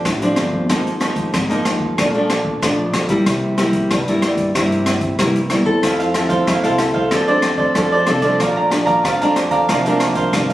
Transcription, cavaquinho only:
5.83 5.98 E4 soft
5.83 5.98 A4 medium
5.83 5.99 C5 soft
5.83 5.98 F5 medium
5.99 6.13 A4 medium
5.99 6.14 C5 medium
5.99 6.14 F5 medium
6.14 muted cavaquinho stroke soft
6.29 6.46 A4 medium
6.29 6.46 C5 medium
6.29 6.45 F5 medium
6.47 6.62 E4 soft
6.47 6.63 A4 soft
6.47 6.63 C5 medium
6.47 6.62 F5 medium
6.63 6.78 A4 medium
6.63 6.78 C5 medium
6.63 6.78 F5 medium
6.79 muted cavaquinho stroke soft
6.94 7.11 A4 medium
6.94 7.10 C5 medium
6.94 7.10 F5 medium
7.12 7.27 F4 soft
7.12 7.27 A4 soft
7.12 7.28 C5 soft
7.12 7.27 D5 medium
7.28 7.59 A4 medium
7.28 7.58 C5 medium
7.28 7.57 D5 medium
7.58 7.91 A4 medium
7.58 7.91 C5 medium
7.58 7.90 D5 medium
7.92 8.07 A4 medium
7.92 8.08 C5 medium
7.92 8.07 D5 medium
8.07 8.23 F4 soft
8.07 8.23 A4 medium
8.07 8.22 C5 medium
8.07 8.21 D5 medium
8.22 8.39 A4 medium
8.22 8.39 C5 medium
8.22 8.38 D5 medium
8.40 8.55 A4 medium
8.40 8.56 D5 medium
8.40 8.56 F5 medium
8.40 8.55 A#5 medium
8.56 8.69 D5 medium
8.56 8.70 F5 medium
8.56 8.70 A#5 medium
8.70 muted cavaquinho stroke soft
8.86 9.03 D5 medium
8.86 9.03 F5 medium
8.86 9.02 A#5 medium
9.04 9.19 A4 medium
9.04 9.20 D5 medium
9.04 9.20 F5 medium
9.04 9.20 A#5 medium
9.21 9.35 D5 medium
9.21 9.35 F5 medium
9.21 9.36 A#5 medium
9.36 muted cavaquinho stroke soft
9.51 9.68 D5 medium
9.51 9.67 F5 medium
9.51 9.67 A#5 medium
9.69 9.84 F4 soft
9.69 9.84 A#4 soft
9.69 9.84 C5 soft
9.69 9.84 F5 medium
9.85 10.16 A#4 medium
9.85 10.15 C5 medium
9.85 10.14 F5 medium
10.15 10.48 A#4 medium
10.15 10.48 C5 medium
10.15 10.47 F5 medium
10.50 10.53 F5 medium

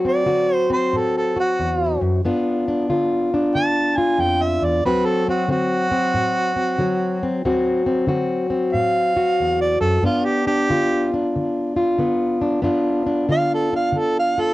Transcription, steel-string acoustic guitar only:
0.00 0.23 D2 medium
0.00 2.23 F#3 medium
0.00 0.25 F#4 medium
0.05 0.69 C4 medium
0.26 0.87 D3 medium
0.26 1.35 F#4 medium
0.70 2.20 C4 medium
0.93 1.53 A2 medium
1.36 2.21 F#4 medium
1.59 2.01 E2 medium
2.01 2.23 F#2 medium
2.25 2.84 G2 medium
2.25 4.81 B3 medium
2.25 2.68 D4 medium
2.25 2.89 F4 medium
2.68 3.33 D4 medium
2.90 3.50 D3 medium
2.90 3.96 F4 medium
3.34 4.86 D4 medium
3.55 4.14 D3 medium
3.98 4.81 F4 medium
4.18 4.60 F2 medium
4.62 4.83 E2 medium
4.85 5.44 D2 medium
4.85 6.78 F#3 medium
4.85 5.28 C4 medium
4.85 7.42 F#4 medium
5.28 5.49 C4 medium
5.48 6.08 D3 medium
5.48 5.91 C4 medium
5.91 6.55 C4 medium
6.14 6.74 A2 medium
6.56 7.21 C4 medium
6.78 7.39 D3 medium
6.78 7.43 F#3 medium
7.23 7.41 C4 medium
7.45 8.05 D2 medium
7.45 10.03 F#3 medium
7.45 7.85 C4 medium
7.45 8.07 F#4 medium
7.86 8.49 C4 medium
8.07 8.68 D3 medium
8.07 9.15 F#4 medium
8.50 10.00 C4 medium
8.74 9.34 A2 medium
9.17 10.01 F#4 medium
9.40 9.80 E2 medium
9.81 10.02 F#2 medium
10.03 10.64 G2 medium
10.03 11.98 B3 medium
10.03 10.46 D4 medium
10.47 11.13 D4 medium
10.70 11.30 D3 medium
10.70 11.75 F4 medium
11.14 12.41 D4 medium
11.36 11.95 D3 medium
11.76 12.61 F4 medium
11.98 12.59 D3 medium
11.98 12.61 B3 medium
12.41 12.63 D4 medium
12.62 13.24 G2 medium
12.62 14.54 B3 medium
12.62 13.06 D4 medium
12.62 13.28 F4 medium
13.06 13.73 D4 medium
13.29 13.90 D3 medium
13.29 14.37 F4 medium
13.73 14.54 D4 medium
13.92 14.54 D3 medium
14.38 14.54 F4 medium

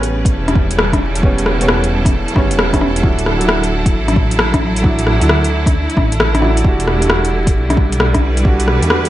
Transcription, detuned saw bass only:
0.00 0.35 A1 loud
0.33 1.59 E1 medium
1.60 2.26 E1 medium
2.36 2.52 G1 medium
2.51 3.03 E1 medium
3.03 3.95 D1 loud
3.94 5.19 A1 medium
5.21 5.87 D2 medium
5.97 6.10 A1 medium
6.11 6.63 A1 medium
6.64 7.56 E1 loud
7.55 8.80 B1 medium
8.82 9.09 E2 medium

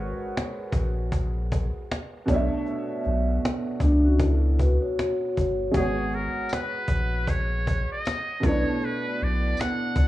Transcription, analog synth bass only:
0.00 0.13 G#1 loud
0.73 1.70 A#1 loud
2.28 2.49 B1 loud
3.06 3.39 B1 medium
3.81 4.78 C#2 medium
5.38 5.70 G1 medium
5.75 6.28 G#1 loud
6.89 7.85 A#1 loud
8.44 8.64 B1 medium
9.22 9.54 B1 medium
9.97 10.08 C#2 loud

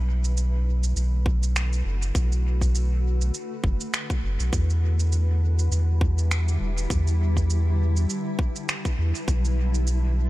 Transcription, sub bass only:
0.00 0.94 B1 medium
0.96 1.83 B1 medium
1.85 2.12 F#1 medium
2.15 3.31 B1 medium
3.64 3.78 F#1 medium
4.23 4.38 F#1 medium
4.40 4.51 B1 medium
4.53 5.69 E2 medium
5.71 6.58 E2 medium
6.60 6.87 E1 medium
6.90 8.07 E2 medium
8.98 9.13 E2 medium
9.28 10.30 B1 loud

